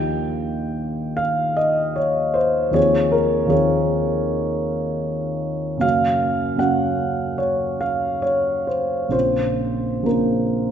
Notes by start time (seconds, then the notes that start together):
Already playing: D#2 F3 A#3 D#4 G4 G5
1.17 F5
1.57 D#5
1.96 C#5
2.34 C5
2.71 D#2 F3 A#3 C4 G#4 C#5
3.12 A#4
3.46 D#2 F3 A#3 C4 G#4 C#5
5.77 F#2 C#3 A#3 C#4 F#4 F5
6.56 F#2 C#3 A#3 C#4 F#4 F#5
7.38 C#5
7.81 F5
8.22 C#5
8.67 C5
9.09 A#1 C#3 A#3 C4 F4 C5
10.03 A#1 C#3 A#3 C4 F4 A#4